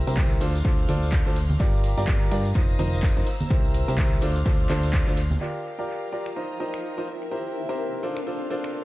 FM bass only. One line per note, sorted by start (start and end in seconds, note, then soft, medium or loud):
0.07 0.39 C2 loud
0.41 0.63 D2 loud
0.65 0.87 D2 medium
0.89 1.23 D2 loud
1.26 1.58 D2 loud
1.60 1.95 G1 medium
1.98 2.29 G1 loud
2.31 2.53 G2 loud
2.55 2.77 F1 loud
2.79 3.14 F1 loud
3.17 3.23 F1 loud
3.50 3.85 C2 medium
3.88 4.20 C2 loud
4.22 4.44 D2 loud
4.46 4.68 D2 loud
4.70 5.04 D2 loud
5.07 5.39 D2 loud